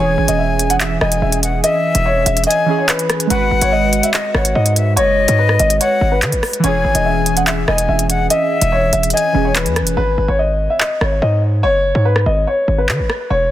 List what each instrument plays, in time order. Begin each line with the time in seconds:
Already playing: 808-style bass E1, synth keys E3 C#4, grand piano C#5, flute G#5
0.01 synth keys G#4
0.18 808-style bass G#1
0.28 808-style bass E1, grand piano D#5, closed hi-hat
0.39 grand piano E5
0.59 closed hi-hat
0.70 grand piano F#5, closed hi-hat
0.80 grand piano E5, flute E5, clap, closed hi-hat
1.01 808-style bass E1, grand piano D#5, flute G#5, cross-stick
1.12 closed hi-hat
1.22 808-style bass E1, grand piano E5
1.32 closed hi-hat
1.43 flute F#5, closed hi-hat
1.64 grand piano D#5, flute E5, closed hi-hat
1.95 808-style bass E1, closed hi-hat
2.05 grand piano C#5
2.26 808-style bass E1, grand piano E5, closed hi-hat
2.37 closed hi-hat
2.44 grand piano D#5, flute G#5, closed hi-hat
2.51 closed hi-hat
2.66 synth keys E3 C#4
2.70 synth keys G#4
2.78 grand piano C#5
2.89 grand piano B4, clap, closed hi-hat
2.99 closed hi-hat
3.10 cross-stick, closed hi-hat
3.20 closed hi-hat
3.27 808-style bass G#1, synth keys G#3, grand piano B4, flute F#5, closed hi-hat
3.31 synth keys F#4
3.35 synth keys B4
3.51 808-style bass G#1
3.61 808-style bass G#1, grand piano C#5, closed hi-hat
3.72 grand piano D#5
3.93 closed hi-hat
4.03 grand piano E5, closed hi-hat
4.14 grand piano D#5, flute D#5, clap, closed hi-hat
4.34 808-style bass G#1, grand piano C#5, flute F#5, cross-stick
4.45 closed hi-hat
4.55 808-style bass G#2, grand piano D#5
4.66 closed hi-hat
4.76 flute E5, closed hi-hat
4.96 808-style bass F#1, grand piano C#5, flute D#5, closed hi-hat
5.28 808-style bass G#2, closed hi-hat
5.39 grand piano B4
5.49 cross-stick
5.59 808-style bass G#1, grand piano D#5, closed hi-hat
5.70 closed hi-hat
5.80 grand piano C#5, flute F#5, closed hi-hat
6.01 808-style bass G#1
6.12 grand piano B4
6.22 808-style bass D#3, clap, closed hi-hat
6.32 808-style bass G#1, closed hi-hat
6.43 cross-stick, open hi-hat
6.53 closed hi-hat
6.60 synth keys E3 C#4
6.64 808-style bass E1, synth keys G#4, grand piano C#5, flute G#5, closed hi-hat
6.85 808-style bass G#1
6.95 808-style bass E1, grand piano D#5, closed hi-hat
7.05 grand piano E5
7.26 closed hi-hat
7.37 grand piano F#5, closed hi-hat
7.47 grand piano E5, flute E5, clap, closed hi-hat
7.68 808-style bass E1, grand piano D#5, flute G#5, cross-stick
7.78 closed hi-hat
7.89 808-style bass E1, grand piano E5
7.99 closed hi-hat
8.10 flute F#5, closed hi-hat
8.30 grand piano D#5, flute E5, closed hi-hat
8.61 808-style bass E1, closed hi-hat
8.72 grand piano C#5
8.93 808-style bass E1, grand piano E5, closed hi-hat
9.03 closed hi-hat
9.10 grand piano D#5, flute G#5, closed hi-hat
9.17 closed hi-hat
9.33 808-style bass E1, synth keys E3 C#4 G#4
9.45 grand piano C#5
9.55 grand piano B4, clap, closed hi-hat
9.66 808-style bass E2, closed hi-hat
9.76 cross-stick, closed hi-hat
9.81 808-style bass E1
9.87 closed hi-hat
9.97 808-style bass G#1, grand piano B4
10.18 808-style bass G#1
10.28 808-style bass G#1, grand piano C#5
10.39 grand piano D#5
10.70 grand piano E5
10.80 grand piano D#5, clap
11.01 808-style bass G#1, grand piano C#5, cross-stick
11.22 808-style bass G#2, grand piano D#5
11.63 808-style bass F#1, grand piano C#5
11.95 808-style bass G#2
12.05 grand piano B4
12.16 cross-stick
12.26 808-style bass G#1, grand piano D#5
12.47 grand piano C#5
12.68 808-style bass G#1
12.78 grand piano B4
12.89 808-style bass D#3, clap
12.99 808-style bass G#1
13.10 cross-stick
13.30 808-style bass E1, grand piano C#5